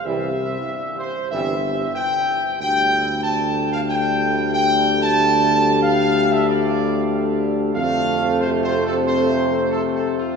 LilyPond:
<<
  \new Staff \with { instrumentName = "Trumpet section" } { \time 4/4 \key d \dorian \tempo 4 = 93 e''4. c''8 e''4 g''4 | g''4 a''8. f''16 g''4 g''8. a''16~ | a''4 f''8. e''16 d''4 r4 | f''4 \tuplet 3/2 { c''8 c''8 a'8 } c''4 \tuplet 3/2 { a'8 a'8 f'8 } | }
  \new Staff \with { instrumentName = "French horn section" } { \time 4/4 \key d \dorian <c' g'>8 r4. <c' g'>8 r4. | <a g'>1~ | <a g'>1 | <a c'>1 | }
  \new Staff \with { instrumentName = "Trombone section" } { \clef bass \time 4/4 \key d \dorian << { g8 r4. g8 r4. | g1~ | g1 | a1 | } \\ { e8 r4. e8 r4. | d1~ | d1~ | d4 c2. | } >> }
  \new Staff \with { instrumentName = "Tuba" } { \clef bass \time 4/4 \key d \dorian c,4 r4 g,,4 r4 | d,1~ | d,1 | f,2.~ f,8 r8 | }
>>